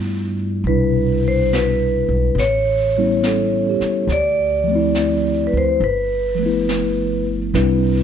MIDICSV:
0, 0, Header, 1, 6, 480
1, 0, Start_track
1, 0, Tempo, 862069
1, 361, Time_signature, 4, 2, 24, 8
1, 4473, End_track
2, 0, Start_track
2, 0, Title_t, "Vibraphone"
2, 0, Program_c, 0, 11
2, 374, Note_on_c, 0, 71, 57
2, 704, Note_off_c, 0, 71, 0
2, 712, Note_on_c, 0, 72, 62
2, 841, Note_off_c, 0, 72, 0
2, 854, Note_on_c, 0, 71, 59
2, 1333, Note_on_c, 0, 73, 69
2, 1339, Note_off_c, 0, 71, 0
2, 2296, Note_on_c, 0, 74, 72
2, 2310, Note_off_c, 0, 73, 0
2, 3045, Note_on_c, 0, 71, 47
2, 3061, Note_off_c, 0, 74, 0
2, 3090, Note_off_c, 0, 71, 0
2, 3104, Note_on_c, 0, 72, 67
2, 3249, Note_off_c, 0, 72, 0
2, 3251, Note_on_c, 0, 71, 58
2, 4033, Note_off_c, 0, 71, 0
2, 4473, End_track
3, 0, Start_track
3, 0, Title_t, "Tine electric piano"
3, 0, Program_c, 1, 4
3, 0, Control_c, 1, 64, 127
3, 0, Note_on_c, 1, 57, 45
3, 0, Note_on_c, 1, 59, 34
3, 0, Note_on_c, 1, 62, 30
3, 0, Note_on_c, 1, 64, 37
3, 0, Note_on_c, 1, 65, 46
3, 358, Note_off_c, 1, 57, 0
3, 365, Note_off_c, 1, 59, 0
3, 367, Control_c, 1, 64, 0
3, 370, Note_off_c, 1, 62, 0
3, 373, Note_off_c, 1, 65, 0
3, 373, Note_on_c, 1, 55, 45
3, 374, Note_off_c, 1, 64, 0
3, 377, Note_on_c, 1, 47, 42
3, 381, Note_on_c, 1, 64, 48
3, 382, Note_on_c, 1, 62, 43
3, 450, Control_c, 1, 64, 127
3, 1323, Note_off_c, 1, 55, 0
3, 1323, Control_c, 1, 64, 0
3, 1325, Note_off_c, 1, 47, 0
3, 1327, Note_off_c, 1, 62, 0
3, 1327, Note_off_c, 1, 64, 0
3, 1430, Control_c, 1, 64, 127
3, 1656, Note_on_c, 1, 55, 44
3, 1659, Note_on_c, 1, 59, 43
3, 1661, Note_on_c, 1, 61, 41
3, 1664, Note_on_c, 1, 64, 48
3, 1818, Note_on_c, 1, 69, 36
3, 2058, Note_on_c, 1, 67, 41
3, 2187, Note_off_c, 1, 69, 0
3, 2280, Note_off_c, 1, 55, 0
3, 2281, Note_off_c, 1, 59, 0
3, 2282, Note_off_c, 1, 61, 0
3, 2282, Control_c, 1, 64, 0
3, 2284, Note_off_c, 1, 64, 0
3, 2363, Control_c, 1, 64, 127
3, 2383, Note_off_c, 1, 67, 0
3, 2582, Note_on_c, 1, 53, 49
3, 2605, Note_on_c, 1, 57, 42
3, 2625, Note_on_c, 1, 60, 42
3, 2647, Note_on_c, 1, 64, 53
3, 3224, Note_off_c, 1, 53, 0
3, 3235, Note_off_c, 1, 57, 0
3, 3241, Control_c, 1, 64, 0
3, 3245, Note_off_c, 1, 60, 0
3, 3256, Note_off_c, 1, 64, 0
3, 3343, Control_c, 1, 64, 127
3, 3534, Note_on_c, 1, 53, 43
3, 3556, Note_on_c, 1, 57, 38
3, 3579, Note_on_c, 1, 59, 37
3, 3596, Note_on_c, 1, 64, 45
3, 4185, Note_off_c, 1, 53, 0
3, 4195, Note_off_c, 1, 57, 0
3, 4198, Note_off_c, 1, 64, 0
3, 4201, Note_on_c, 1, 55, 49
3, 4201, Note_on_c, 1, 60, 48
3, 4203, Note_on_c, 1, 71, 58
3, 4204, Note_on_c, 1, 62, 45
3, 4204, Note_on_c, 1, 64, 46
3, 4205, Control_c, 1, 64, 0
3, 4207, Note_off_c, 1, 59, 0
3, 4313, Control_c, 1, 64, 127
3, 4473, Note_off_c, 1, 55, 0
3, 4473, Note_off_c, 1, 60, 0
3, 4473, Note_off_c, 1, 62, 0
3, 4473, Note_off_c, 1, 64, 0
3, 4473, Note_off_c, 1, 71, 0
3, 4473, End_track
4, 0, Start_track
4, 0, Title_t, "Upright bass"
4, 0, Program_c, 2, 32
4, 0, Note_on_c, 2, 43, 61
4, 334, Note_off_c, 2, 43, 0
4, 355, Note_on_c, 2, 36, 63
4, 1141, Note_off_c, 2, 36, 0
4, 1161, Note_on_c, 2, 35, 53
4, 1304, Note_off_c, 2, 35, 0
4, 1307, Note_on_c, 2, 33, 63
4, 2096, Note_off_c, 2, 33, 0
4, 2268, Note_on_c, 2, 38, 63
4, 3056, Note_off_c, 2, 38, 0
4, 3079, Note_on_c, 2, 38, 52
4, 3222, Note_off_c, 2, 38, 0
4, 3231, Note_on_c, 2, 31, 65
4, 4175, Note_off_c, 2, 31, 0
4, 4197, Note_on_c, 2, 36, 66
4, 4473, Note_off_c, 2, 36, 0
4, 4473, End_track
5, 0, Start_track
5, 0, Title_t, "Muted upright bass strokes"
5, 2119, Note_on_c, 9, 29, 30
5, 2175, Note_off_c, 9, 29, 0
5, 4473, End_track
6, 0, Start_track
6, 0, Title_t, "Drums"
6, 368, Note_on_c, 9, 25, 26
6, 852, Note_on_c, 9, 38, 36
6, 852, Note_on_c, 9, 44, 46
6, 908, Note_off_c, 9, 38, 0
6, 908, Note_off_c, 9, 44, 0
6, 1326, Note_off_c, 9, 25, 0
6, 1326, Note_on_c, 9, 25, 30
6, 1326, Note_on_c, 9, 38, 25
6, 1382, Note_off_c, 9, 38, 0
6, 1800, Note_on_c, 9, 38, 35
6, 1800, Note_on_c, 9, 44, 45
6, 1856, Note_off_c, 9, 38, 0
6, 1856, Note_off_c, 9, 44, 0
6, 2119, Note_on_c, 9, 38, 25
6, 2175, Note_off_c, 9, 38, 0
6, 2276, Note_off_c, 9, 25, 0
6, 2276, Note_on_c, 9, 25, 31
6, 2276, Note_on_c, 9, 38, 23
6, 2331, Note_off_c, 9, 38, 0
6, 2755, Note_on_c, 9, 38, 36
6, 2755, Note_on_c, 9, 44, 47
6, 2811, Note_off_c, 9, 38, 0
6, 2811, Note_off_c, 9, 44, 0
6, 3236, Note_off_c, 9, 25, 0
6, 3236, Note_on_c, 9, 25, 33
6, 3725, Note_on_c, 9, 38, 34
6, 3725, Note_on_c, 9, 44, 39
6, 3780, Note_off_c, 9, 38, 0
6, 3780, Note_off_c, 9, 44, 0
6, 4201, Note_off_c, 9, 25, 0
6, 4201, Note_on_c, 9, 25, 43
6, 4201, Note_on_c, 9, 38, 37
6, 4257, Note_off_c, 9, 38, 0
6, 4473, Note_off_c, 9, 25, 0
6, 4473, End_track
0, 0, End_of_file